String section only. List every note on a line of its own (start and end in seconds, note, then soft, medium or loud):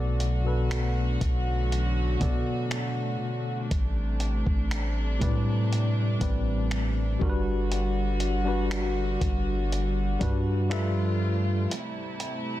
0.00 3.67 D3 medium
0.00 3.67 F#3 medium
0.00 7.17 A3 medium
0.00 3.67 F#4 medium
3.71 7.18 C3 medium
3.71 12.60 G3 medium
3.71 7.18 D4 medium
7.21 10.68 D3 medium
7.21 10.68 F#4 medium
10.71 11.70 F3 medium
10.71 11.70 A3 medium
10.71 11.70 F4 medium
11.71 12.60 C3 medium
11.71 12.60 A3 medium
11.71 12.60 E4 medium